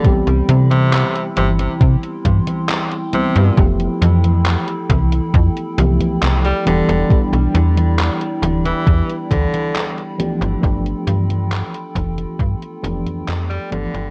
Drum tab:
HH |xxxxxxxxxxxxxxxx|xxxxxxxxxxxxxxxx|xxxxxxxxxxxxxxxx|xxxxxxxxxxxxxxxx|
CP |----x-------x---|----x-------x---|----x-------x---|----x-------x---|
CG |o-ooo-oo--ooo-oo|o-ooo-ooo-ooo-oo|o-ooo-ooo-ooo-oo|o-ooo-ooo-ooo-oo|
BD |o-------o-o-----|o-----o-o-------|o-------o-o-----|o-----o-o-------|